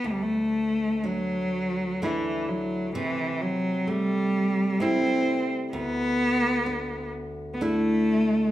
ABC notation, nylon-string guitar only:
X:1
M:3/4
L:1/8
Q:1/4=64
K:Dmix
V:1 name="Nylon-string guitar"
D,,2 D2 [A,DE]2 | C,2 A,2 [G,A,E]2 | D,,2 D2 [A,DE]2 |]